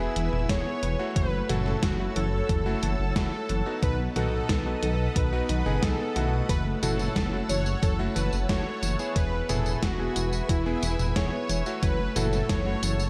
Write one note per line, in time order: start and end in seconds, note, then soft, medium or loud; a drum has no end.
0.00 0.15 B3 medium
0.00 0.45 B3 medium
0.00 0.45 E4 medium
0.00 0.51 E4 medium
0.00 0.52 E4 loud
0.00 0.45 G#4 loud
0.00 1.13 B4 medium
0.00 1.12 E5 medium
0.00 1.13 G#5 medium
0.00 1.13 E6 medium
0.16 0.29 E1 loud
0.16 0.28 E3 loud
0.16 closed hi-hat medium
0.33 0.46 E1 medium
0.33 mid tom medium
0.49 0.62 E1 medium
0.49 0.65 E3 medium
0.49 0.95 B3 medium
0.49 0.95 E4 medium
0.49 0.95 G#4 medium
0.49 1.18 C#5 loud
0.49 kick loud
0.49 snare loud
0.49 closed hi-hat loud
0.66 0.82 B3 medium
0.83 0.96 E1 loud
0.83 0.95 E3 loud
0.83 closed hi-hat medium
0.99 1.45 A3 medium
0.99 1.45 E4 medium
0.99 1.45 F#4 loud
1.16 1.42 F#1 medium
1.16 1.32 E3 loud
1.16 1.50 B4 loud
1.16 1.51 B4 loud
1.16 3.80 C#5 medium
1.16 9.12 F#5 medium
1.16 3.80 A5 medium
1.16 3.80 E6 medium
1.16 kick loud
1.16 closed hi-hat medium
1.33 1.49 A3 medium
1.49 1.75 F#1 medium
1.49 1.61 E3 loud
1.49 1.78 A3 loud
1.49 1.78 E4 loud
1.49 1.78 F#4 loud
1.49 1.84 A4 loud
1.49 closed hi-hat medium
1.49 mid tom medium
1.66 snare soft
1.83 2.08 F#1 medium
1.83 1.99 E3 loud
1.83 2.14 F#4 medium
1.83 kick loud
1.83 snare loud
1.83 closed hi-hat medium
1.99 2.62 A3 medium
1.99 2.15 A3 medium
1.99 2.62 E4 medium
1.99 2.62 F#4 medium
2.16 2.42 F#1 loud
2.16 2.28 E3 loud
2.16 3.15 A4 loud
2.16 closed hi-hat medium
2.49 2.75 F#1 medium
2.49 2.65 E3 loud
2.49 kick loud
2.49 closed hi-hat medium
2.66 3.12 A3 medium
2.66 2.82 A3 medium
2.66 3.12 E4 medium
2.66 3.12 F#4 loud
2.83 2.95 F#1 loud
2.83 2.95 E3 loud
2.83 closed hi-hat medium
2.99 3.12 F#1 loud
3.16 3.29 F#1 medium
3.16 3.32 E3 loud
3.16 3.62 A3 medium
3.16 3.62 E4 medium
3.16 3.62 F#4 medium
3.16 3.85 A4 loud
3.16 kick loud
3.16 snare loud
3.16 closed hi-hat loud
3.33 3.49 A3 medium
3.49 3.62 F#1 loud
3.49 3.61 E3 loud
3.49 closed hi-hat medium
3.66 4.12 B3 medium
3.66 4.12 D#4 medium
3.66 4.12 F#4 loud
3.83 4.08 B1 medium
3.83 3.99 D#3 loud
3.83 6.47 B4 medium
3.83 3.97 B4 loud
3.83 6.47 D#5 medium
3.83 6.47 D#6 medium
3.83 kick loud
3.83 closed hi-hat medium
3.99 4.15 B3 medium
4.16 4.42 B1 medium
4.16 4.28 D#3 loud
4.16 4.45 B3 loud
4.16 4.45 D#4 medium
4.16 4.45 F#4 loud
4.16 4.82 A4 loud
4.16 closed hi-hat medium
4.16 mid tom medium
4.49 4.75 B1 medium
4.49 4.65 D#3 medium
4.49 kick loud
4.49 snare loud
4.49 closed hi-hat medium
4.66 5.29 B3 medium
4.66 4.82 B3 medium
4.66 5.29 D#4 medium
4.66 5.29 F#4 medium
4.83 5.08 B1 loud
4.83 4.95 D#3 loud
4.83 5.17 A4 loud
4.83 closed hi-hat medium
5.16 5.42 B1 medium
5.16 5.32 D#3 loud
5.16 5.85 B4 loud
5.16 5.85 B4 medium
5.16 kick loud
5.16 closed hi-hat medium
5.33 5.63 B3 medium
5.33 5.49 B3 medium
5.33 5.63 D#4 medium
5.33 5.63 F#4 loud
5.49 5.62 B1 medium
5.49 5.61 D#3 loud
5.49 closed hi-hat medium
5.66 5.79 F#1 medium
5.66 6.12 B3 loud
5.66 6.12 D#4 medium
5.66 6.12 G#4 loud
5.66 mid tom medium
5.83 5.95 B1 loud
5.83 5.99 D#3 medium
5.83 6.51 A4 loud
5.83 6.51 A4 medium
5.83 kick loud
5.83 snare loud
5.83 closed hi-hat loud
5.99 6.15 B3 medium
6.16 6.42 B1 medium
6.16 6.28 D#3 medium
6.16 6.79 A3 loud
6.16 6.79 E4 medium
6.16 6.79 F#4 loud
6.16 closed hi-hat medium
6.49 6.75 F#1 loud
6.49 6.65 E3 loud
6.49 6.63 B4 loud
6.49 9.13 C#5 medium
6.49 9.13 A5 medium
6.49 9.13 E6 medium
6.49 kick loud
6.49 closed hi-hat medium
6.49 tambourine soft
6.66 6.82 A3 medium
6.83 7.08 F#1 medium
6.83 6.95 E3 loud
6.83 7.11 A3 loud
6.83 7.11 E4 medium
6.83 7.11 F#4 loud
6.83 7.51 A4 loud
6.83 closed hi-hat medium
6.83 mid tom medium
6.83 tambourine medium
6.99 snare soft
6.99 tambourine soft
7.16 7.42 F#1 medium
7.16 7.32 E3 medium
7.16 kick loud
7.16 snare loud
7.16 closed hi-hat medium
7.16 tambourine soft
7.33 7.48 A3 medium
7.33 7.95 A3 medium
7.33 7.95 E4 medium
7.33 7.95 F#4 medium
7.49 7.75 F#1 loud
7.49 7.61 E3 loud
7.49 7.84 C#5 loud
7.49 closed hi-hat medium
7.49 tambourine medium
7.66 tambourine soft
7.83 8.08 F#1 medium
7.83 7.98 E3 loud
7.83 7.97 A4 loud
7.83 kick loud
7.83 closed hi-hat medium
7.83 tambourine soft
7.99 8.45 A3 medium
7.99 8.15 A3 medium
7.99 8.45 E4 medium
7.99 8.45 F#4 loud
8.16 8.29 F#1 medium
8.16 8.28 E3 loud
8.16 8.30 B4 loud
8.16 closed hi-hat medium
8.16 tambourine medium
8.33 8.45 F#1 medium
8.33 tambourine soft
8.49 8.62 F#1 medium
8.49 8.65 E3 loud
8.49 8.95 A3 medium
8.49 8.95 E4 medium
8.49 8.95 F#4 medium
8.49 9.18 C#5 loud
8.49 kick loud
8.49 snare loud
8.49 closed hi-hat medium
8.49 tambourine soft
8.66 8.82 A3 medium
8.83 8.95 F#1 loud
8.83 8.95 E3 loud
8.83 closed hi-hat medium
8.83 tambourine medium
8.99 9.45 B3 medium
8.99 9.45 E4 medium
8.99 9.45 G#4 loud
8.99 tambourine soft
9.16 9.42 E1 medium
9.16 9.32 E3 loud
9.16 9.50 B4 loud
9.16 11.80 B4 medium
9.16 11.80 E5 medium
9.16 11.80 G#5 medium
9.16 13.10 E6 medium
9.16 kick loud
9.16 closed hi-hat medium
9.16 tambourine soft
9.33 9.49 B3 medium
9.49 9.75 E1 medium
9.49 9.61 E3 loud
9.49 9.78 B3 loud
9.49 9.78 E4 medium
9.49 9.78 G#4 loud
9.49 9.84 A4 loud
9.49 closed hi-hat medium
9.49 mid tom loud
9.49 tambourine medium
9.66 tambourine soft
9.83 10.08 E1 medium
9.83 9.99 E3 loud
9.83 10.51 F#4 loud
9.83 10.51 F#4 medium
9.83 kick loud
9.83 snare loud
9.83 closed hi-hat medium
9.83 tambourine soft
9.99 10.62 B3 medium
9.99 10.15 B3 medium
9.99 10.62 E4 medium
9.99 10.62 G#4 medium
10.16 10.42 E1 loud
10.16 10.28 E3 loud
10.16 closed hi-hat medium
10.16 tambourine medium
10.33 tambourine soft
10.49 10.75 E1 medium
10.49 10.65 E3 loud
10.49 11.18 E4 medium
10.49 11.18 E4 loud
10.49 kick loud
10.49 closed hi-hat medium
10.49 tambourine soft
10.66 11.12 B3 medium
10.66 10.82 B3 medium
10.66 11.12 E4 medium
10.66 11.12 G#4 loud
10.83 10.96 E1 loud
10.83 10.95 E3 loud
10.83 closed hi-hat medium
10.83 tambourine medium
10.99 11.12 E1 loud
10.99 mid tom medium
10.99 tambourine soft
11.16 11.29 E1 medium
11.16 11.32 E3 medium
11.16 11.62 B3 medium
11.16 11.62 E4 medium
11.16 11.62 G#4 medium
11.16 11.85 C#5 medium
11.16 11.85 C#5 loud
11.16 kick loud
11.16 snare loud
11.16 closed hi-hat loud
11.16 tambourine soft
11.33 11.49 B3 medium
11.49 11.62 E1 loud
11.49 11.61 E3 loud
11.49 closed hi-hat medium
11.49 tambourine medium
11.66 12.12 A3 medium
11.66 12.12 E4 medium
11.66 12.12 F#4 loud
11.66 tambourine soft
11.83 12.08 F#1 loud
11.83 11.99 E3 loud
11.83 12.17 B4 loud
11.83 13.10 C#5 medium
11.83 13.10 F#5 medium
11.83 13.10 A5 medium
11.83 kick loud
11.83 closed hi-hat medium
11.83 tambourine soft
11.99 12.15 A3 medium
12.16 12.42 F#1 medium
12.16 12.28 E3 loud
12.16 12.45 A3 loud
12.16 12.45 E4 loud
12.16 12.45 F#4 loud
12.16 12.50 A4 loud
12.16 12.51 A4 loud
12.16 closed hi-hat medium
12.16 mid tom loud
12.16 tambourine medium
12.33 snare soft
12.33 tambourine soft
12.49 12.75 F#1 medium
12.49 12.65 E3 loud
12.49 13.10 C#5 loud
12.49 kick loud
12.49 snare loud
12.49 closed hi-hat medium
12.49 tambourine soft
12.66 12.82 A3 medium
12.66 13.10 A3 medium
12.66 13.10 E4 medium
12.66 13.10 F#4 medium
12.83 13.08 F#1 loud
12.83 12.95 E3 loud
12.83 closed hi-hat medium
12.83 tambourine medium
13.00 tambourine soft